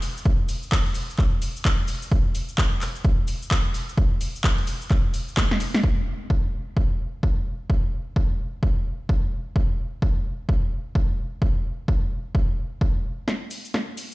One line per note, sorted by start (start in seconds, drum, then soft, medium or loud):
0.02 open hi-hat loud
0.02 cabasa medium
0.17 cabasa medium
0.25 kick loud
0.49 open hi-hat loud
0.49 cabasa medium
0.62 cabasa medium
0.71 kick loud
0.71 clap loud
0.71 cabasa soft
0.86 open hi-hat medium
0.94 open hi-hat loud
0.94 cabasa loud
1.10 cabasa medium
1.19 kick loud
1.19 clap soft
1.19 cabasa soft
1.42 open hi-hat loud
1.42 cabasa medium
1.56 cabasa medium
1.64 kick loud
1.64 clap loud
1.64 cabasa soft
1.87 open hi-hat loud
1.87 cabasa medium
2.02 cabasa medium
2.12 kick loud
2.12 cabasa soft
2.35 open hi-hat loud
2.35 cabasa medium
2.49 cabasa soft
2.58 kick loud
2.58 clap loud
2.58 cabasa soft
2.81 clap soft
2.81 open hi-hat loud
2.81 cabasa medium
2.95 cabasa medium
3.04 kick loud
3.04 cabasa soft
3.27 open hi-hat loud
3.27 cabasa medium
3.42 cabasa soft
3.51 kick loud
3.51 clap loud
3.51 cabasa soft
3.74 open hi-hat loud
3.74 cabasa medium
3.89 cabasa soft
3.97 kick loud
3.97 cabasa soft
4.21 open hi-hat loud
4.21 cabasa medium
4.36 cabasa soft
4.44 kick loud
4.44 clap loud
4.44 cabasa soft
4.58 open hi-hat medium
4.67 open hi-hat loud
4.67 cabasa medium
4.81 cabasa medium
4.91 kick loud
4.91 clap soft
4.91 cabasa soft
5.14 open hi-hat loud
5.14 cabasa medium
5.28 cabasa soft
5.37 kick loud
5.37 snare medium
5.37 clap loud
5.37 cabasa soft
5.51 snare medium
5.60 open hi-hat loud
5.60 cabasa loud
5.74 snare medium
5.74 cabasa medium
5.84 kick loud
6.30 kick loud
6.77 kick loud
7.23 kick medium
7.70 kick loud
8.16 kick loud
8.63 kick loud
9.09 kick loud
9.56 kick loud
10.02 kick loud
10.49 kick loud
10.95 kick loud
11.42 kick loud
11.88 kick loud
12.35 kick loud
12.81 kick loud
13.28 kick loud
13.28 snare soft
13.28 cabasa soft
13.50 open hi-hat loud
13.50 cabasa loud
13.65 cabasa soft
13.74 kick loud
13.74 snare soft
13.74 cabasa soft
13.97 open hi-hat loud
13.97 cabasa medium